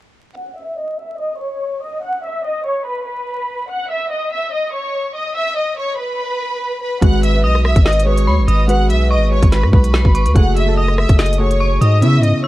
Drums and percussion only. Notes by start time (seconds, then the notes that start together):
7.02 kick, closed hi-hat
7.23 closed hi-hat
7.55 cross-stick
7.65 cross-stick
7.76 kick, closed hi-hat
7.86 snare, closed hi-hat
7.93 closed hi-hat
8.00 closed hi-hat
8.18 closed hi-hat
8.48 closed hi-hat
8.69 closed hi-hat
8.90 closed hi-hat
9.43 kick, closed hi-hat
9.52 snare, closed hi-hat
9.63 cross-stick
9.73 kick
9.84 closed hi-hat
9.94 snare
10.05 kick
10.15 closed hi-hat
10.26 closed hi-hat
10.36 kick, closed hi-hat
10.57 closed hi-hat
10.88 cross-stick
10.98 cross-stick
11.09 kick, closed hi-hat
11.19 snare, closed hi-hat
11.26 closed hi-hat
11.33 closed hi-hat
11.51 closed hi-hat
11.82 closed hi-hat
12.02 closed hi-hat
12.23 closed hi-hat